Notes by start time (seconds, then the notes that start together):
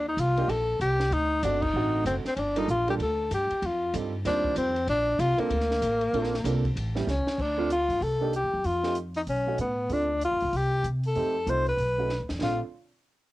Already playing: D#2
0.08 D#4
0.17 C2 F4, hi-hat pedal, ride
0.37 A#3 D4 D#4 F4 G4, ride
0.48 A#1 A4, ride
0.80 C2 G4, hi-hat pedal, ride
1.00 snare
1.11 D2 D#4, ride
1.43 G1 A3 C4 D4 D#4 F#4, hi-hat pedal, ride
1.62 D#4, kick, crash
1.74 A1 D3 A3 C4 D#4 F#4
2.05 F#1 C4, hi-hat pedal, ride
2.25 C4, muted upright bass stroke, snare
2.36 G1 C#4 D4, ride
2.56 G3 A#3 D4 D#4 F4 A4, ride
2.68 A#1 F4, hi-hat pedal
2.88 G3 A#3 D4 F4 G4 A4, ride
2.99 D2 A4, ride
3.31 G2 G4, hi-hat pedal, ride
3.51 muted upright bass stroke, ride
3.62 F2 F4, ride
3.94 G2 G3 C4 D#4 F4 A4, hi-hat pedal, ride
4.25 D#2 D#3 G3 C4 D4 F4 C5, snare, ride
4.44 kick
4.56 F2 C4, hi-hat pedal, ride
4.76 ride
4.88 A#1 D4, ride
5.19 C2 F4, hi-hat pedal, ride
5.38 A#3 C4 D4 F4 A4, muted upright bass stroke, ride
5.50 D2, ride
5.61 snare
5.71 snare
5.82 A1, hi-hat pedal, ride
6.01 ride
6.13 A#1 A#3 C4 D4 F4 A4, ride
6.24 snare
6.34 snare
6.44 C2 A#3 C4 D4 F4 A4, hi-hat pedal, ride
6.64 kick, ride
6.76 A1, ride
6.95 G3 B3 C#4 E4 G4, snare
7.07 C#2 C#4, snare, hi-hat pedal
7.26 muted upright bass stroke, snare
7.38 D2 D4, kick, crash
7.58 A3 C4 D4 F4
7.70 F4, closed hi-hat
7.89 G2, open hi-hat
8.01 C2 A4, open hi-hat
8.21 A#3 D4 D#4 G4
8.33 G4, closed hi-hat
8.44 D#2
8.54 F#2
8.64 F2 F4, open hi-hat
8.84 A3 C4 D#4 G4, snare
8.95 closed hi-hat
9.14 D#4, open hi-hat
9.27 B1 C#4, open hi-hat
9.47 A3 C#4 D#4 F#4
9.58 A2 B3, closed hi-hat
9.89 D2 A3 C4 D4 F4, open hi-hat
10.22 F4, closed hi-hat
10.31 F2
10.41 C#2, open hi-hat
10.53 C2, open hi-hat
10.57 G4
10.84 C3, closed hi-hat
11.04 A4, open hi-hat
11.15 F2 A3 C4 D#4 G4, open hi-hat
11.47 C2 A3 C4 D#4 F4 C5, closed hi-hat
11.67 B4, open hi-hat
11.77 B1, open hi-hat
11.98 A3 C#4 D#4 F#4
12.09 snare
12.20 D#2
12.29 F2, snare
12.41 A#1 A3 C4 D4 F4, snare